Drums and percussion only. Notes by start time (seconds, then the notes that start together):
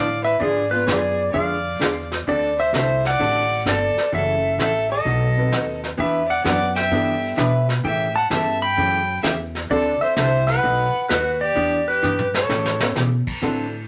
0.41 brush sweep, kick
0.88 snare, hi-hat pedal
1.34 brush sweep, kick
1.81 snare, hi-hat pedal
2.12 snare
2.27 brush sweep, kick
2.74 snare, hi-hat pedal
3.05 snare
3.20 brush sweep, kick
3.66 snare, hi-hat pedal
3.98 snare
4.13 brush sweep, kick
4.59 snare, hi-hat pedal
5.06 brush sweep, kick
5.53 snare, hi-hat pedal
5.84 snare
5.99 brush sweep, kick
6.45 snare, hi-hat pedal
6.76 snare
6.91 brush sweep, kick
7.38 snare, hi-hat pedal
7.69 snare
7.84 brush sweep, kick
8.31 snare, hi-hat pedal
8.78 brush sweep, kick
9.24 snare, hi-hat pedal
9.55 snare
9.70 brush sweep, kick
10.17 snare, hi-hat pedal
10.48 snare
10.63 brush sweep, kick
11.10 snare, hi-hat pedal
11.57 brush sweep, kick
12.03 hi-hat pedal
12.19 mid tom
12.34 snare
12.50 snare
12.65 snare
12.80 snare
12.96 snare, hi-hat pedal
13.27 kick, crash
13.43 brush sweep, kick, snare